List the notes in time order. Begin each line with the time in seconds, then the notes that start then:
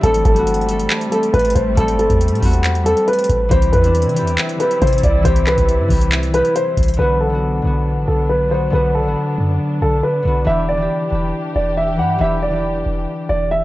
Already playing: D4 G4
0.01 A1 G3 A3 C4 A4, kick, closed hi-hat
0.06 A4
0.14 closed hi-hat
0.25 G1 A4, kick, closed hi-hat
0.34 G3 C4, closed hi-hat
0.39 F#4
0.47 closed hi-hat
0.54 closed hi-hat
0.61 closed hi-hat
0.66 G3 C4, closed hi-hat
0.71 A4
0.80 closed hi-hat
0.90 clap, closed hi-hat
1.01 closed hi-hat
1.09 G3 C4 A4, closed hi-hat
1.14 A4
1.23 closed hi-hat
1.34 A1 B4, kick, closed hi-hat
1.39 closed hi-hat
1.45 closed hi-hat
1.50 closed hi-hat
1.55 A1 C5, kick, closed hi-hat
1.75 A1 G3 C4 A4, kick, closed hi-hat
1.80 A4
1.88 closed hi-hat
1.99 G1 A4, closed hi-hat
2.10 E2, kick, closed hi-hat
2.21 closed hi-hat
2.28 A2, closed hi-hat
2.35 closed hi-hat
2.40 E2 G3 C4, kick, open hi-hat
2.45 F#4
2.53 closed hi-hat
2.64 clap, closed hi-hat
2.75 closed hi-hat
2.83 G3 C4 A4, closed hi-hat
2.88 A4
2.97 closed hi-hat
3.08 B4, closed hi-hat
3.13 closed hi-hat
3.19 closed hi-hat
3.24 closed hi-hat
3.29 A1, kick, closed hi-hat
3.49 C2 C3 E3 G3 C4 E4 C5, kick, closed hi-hat
3.54 G4
3.62 closed hi-hat
3.73 E2 B4, kick, closed hi-hat
3.81 E3 C4, closed hi-hat
3.86 D4
3.95 closed hi-hat
4.02 C3, closed hi-hat
4.09 closed hi-hat
4.14 E3 C4, closed hi-hat
4.19 E2 G4
4.27 closed hi-hat
4.38 clap, closed hi-hat
4.49 closed hi-hat
4.58 E3 C4 B4, closed hi-hat
4.63 G4
4.71 closed hi-hat
4.82 C3 C5, kick, closed hi-hat
4.87 closed hi-hat
4.93 closed hi-hat
4.98 closed hi-hat
5.03 C2 D5, kick, closed hi-hat
5.23 C2 E3 C4 C5, kick, closed hi-hat
5.28 G4
5.36 closed hi-hat
5.47 B4, clap, closed hi-hat
5.58 C2, kick, closed hi-hat
5.69 closed hi-hat
5.79 G2
5.88 C2 E3 C4, kick, open hi-hat
5.93 G4
6.01 closed hi-hat
6.12 clap, closed hi-hat
6.23 closed hi-hat
6.31 E3 C4 B4, closed hi-hat
6.36 G4
6.45 closed hi-hat
6.56 C5, closed hi-hat
6.77 C2, kick, closed hi-hat
6.83 closed hi-hat
6.88 closed hi-hat
6.94 D3, closed hi-hat
6.99 B1 F#3 B3 D4 F#4 B4
7.20 A4
7.30 D3 B3
7.34 F#4
7.62 B1 D3 B3
7.67 F#4
7.97 A1
8.08 B1 A4
8.29 B4
8.49 D3 B3 C5
8.54 F#4
8.70 B1 D3 B3 B4
8.75 F#4
8.95 A4
9.03 A1 D3 B3
9.08 F#4
9.38 F#2
9.82 B1 A4
10.03 B4
10.23 B1 D3 B3
10.27 F#4
10.44 E1 E3 D4 G4 E5
10.49 G4
10.69 D5
10.77 E3 D4
10.82 G4
11.10 E1 E3 D4
11.15 G4
11.56 E1 D5
11.77 E5
11.97 G2 E3 D4 F#5
12.01 G4
12.19 E1 E3 D4 E5
12.23 G4
12.42 D5
12.51 E3 D4
12.56 G4
12.86 E1
13.29 E1 D5
13.51 E5